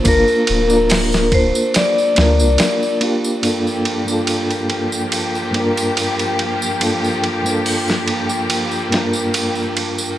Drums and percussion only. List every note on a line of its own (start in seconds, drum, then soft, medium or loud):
0.05 kick loud
0.05 ride medium
0.05 tambourine medium
0.28 tambourine soft
0.47 ride medium
0.70 tambourine medium
0.89 snare loud
0.89 open hi-hat medium
0.89 tambourine medium
1.12 snare soft
1.12 tambourine soft
1.32 kick loud
1.32 ride medium
1.55 tambourine medium
1.74 snare loud
1.74 ride medium
1.74 tambourine medium
1.98 tambourine soft
2.16 snare loud
2.16 ride medium
2.39 tambourine medium
2.58 snare loud
2.58 ride medium
2.58 tambourine medium
2.83 tambourine soft
3.01 ride medium
3.24 tambourine medium
3.43 ride medium
3.43 tambourine medium
3.67 tambourine soft
3.85 ride medium
4.08 tambourine medium
4.27 ride medium
4.27 tambourine medium
4.50 ride soft
4.50 tambourine soft
4.70 ride medium
4.92 tambourine medium
5.12 ride medium
5.12 tambourine medium
5.35 tambourine soft
5.54 ride medium
5.77 ride soft
5.77 tambourine medium
5.97 ride medium
5.97 tambourine medium
6.19 ride soft
6.19 tambourine soft
6.39 ride medium
6.62 tambourine medium
6.81 ride medium
6.81 tambourine medium
7.04 tambourine soft
7.24 ride medium
7.46 tambourine medium
7.66 open hi-hat medium
7.66 tambourine medium
7.88 snare soft
7.88 tambourine soft
8.08 ride medium
8.29 tambourine medium
8.50 ride medium
8.50 tambourine medium
8.71 tambourine soft
8.92 snare soft
8.92 ride medium
9.13 tambourine medium
9.34 ride medium
9.34 tambourine medium
9.55 tambourine soft
9.77 ride medium
9.98 tambourine medium